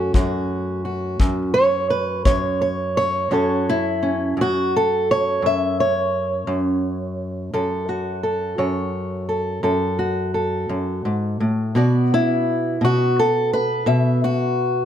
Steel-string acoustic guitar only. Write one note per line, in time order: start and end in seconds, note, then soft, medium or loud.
0.00 0.13 F#2 medium
0.00 1.54 A3 medium
0.00 3.30 C#4 soft
0.00 0.14 F#4 medium
0.14 1.18 F#2 medium
0.14 0.84 F#4 soft
0.85 1.53 F#4 soft
1.20 2.25 F#2 medium
1.54 1.90 C#5 loud
1.90 2.25 B4 medium
2.25 3.30 F#2 medium
2.25 2.60 C#5 medium
2.62 2.96 C#5 medium
2.97 3.32 C#5 medium
3.31 4.36 F#2 medium
3.31 4.02 C#4 soft
3.31 3.69 F#4 soft
3.31 4.76 A4 soft
3.31 4.41 C#5 soft
3.69 4.38 E4 medium
4.03 7.49 C#4 soft
4.37 5.42 F#2 medium
4.41 4.74 F#4 loud
4.76 5.09 A4 medium
5.11 5.44 C#5 medium
5.42 6.46 F#2 medium
5.42 5.79 E5 medium
5.80 7.89 C#5 medium
6.47 7.52 F#2 medium
7.54 8.57 F#2 medium
7.54 8.22 A4 soft
7.89 9.98 F#4 soft
8.23 9.28 A4 soft
8.58 9.62 F#2 medium
8.58 11.71 C#5 soft
9.29 9.63 A4 soft
9.63 10.68 F#2 medium
9.63 10.33 A4 soft
9.99 11.76 F#4 soft
10.34 11.71 A4 soft
10.69 11.04 F#2 medium
11.05 11.40 G#2 medium
11.40 11.75 A2 medium
11.75 12.80 B2 medium
11.75 14.85 B3 soft
11.75 12.13 F#4 soft
11.75 12.82 D5 medium
12.14 12.82 E4 loud
12.81 13.85 B2 medium
12.81 13.18 F#4 loud
13.19 13.53 A4 medium
13.53 13.87 B4 medium
13.86 14.85 B2 medium
13.86 14.22 E5 medium
14.24 14.85 F#4 medium